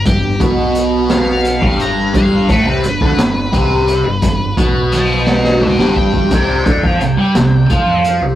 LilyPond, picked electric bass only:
\new Staff \with { instrumentName = "Picked electric bass" } { \clef bass \time 6/8 \key g \mixolydian \tempo 4. = 58 g,,8 b,,4.~ b,,16 g,,8. | g,,8 a,,16 c,16 g,,16 d,16 g,,8 c,8. g,,16 | g,,8 b,,4.~ b,,16 g,,8. | c,8 d,16 f,16 c,16 g,16 c,8 f,8. c,16 | }